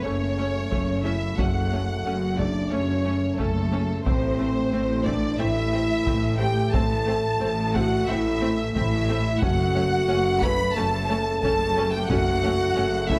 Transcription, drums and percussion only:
0.72 taiko medium
1.38 taiko medium
2.39 taiko medium
3.39 taiko medium
4.06 taiko medium
5.06 taiko medium
6.07 taiko medium
6.74 taiko medium
7.75 taiko medium
8.76 taiko medium
9.42 taiko medium
10.42 taiko medium
11.43 taiko medium
12.10 taiko medium
13.09 taiko medium

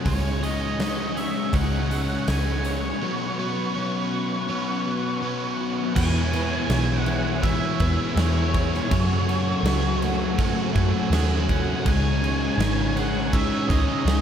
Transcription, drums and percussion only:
0.06 kick loud
0.06 open hi-hat medium
0.43 open hi-hat medium
0.80 snare loud
0.80 open hi-hat medium
1.17 open hi-hat medium
1.53 kick loud
1.53 open hi-hat medium
1.91 open hi-hat medium
2.28 snare loud
2.28 open hi-hat medium
2.65 open hi-hat medium
5.96 kick loud
5.96 crash loud
5.96 crash medium
6.33 crash medium
6.70 snare loud
6.70 crash medium
7.06 crash medium
7.43 kick loud
7.43 crash medium
7.80 kick medium
7.80 crash medium
8.17 snare loud
8.17 crash medium
8.54 kick medium
8.54 crash medium
8.74 snare soft
8.91 kick loud
8.91 crash medium
9.29 crash medium
9.65 snare loud
9.65 crash medium
10.02 crash medium
10.39 kick loud
10.39 crash medium
10.76 kick medium
10.76 crash medium
11.13 snare loud
11.13 crash medium
11.49 kick medium
11.49 crash medium
11.86 kick loud
11.86 crash medium
12.24 crash medium
12.60 snare loud
12.60 crash medium
12.97 crash medium
13.33 kick loud
13.33 crash medium
13.70 kick medium
13.70 crash medium
14.07 snare loud
14.07 crash medium

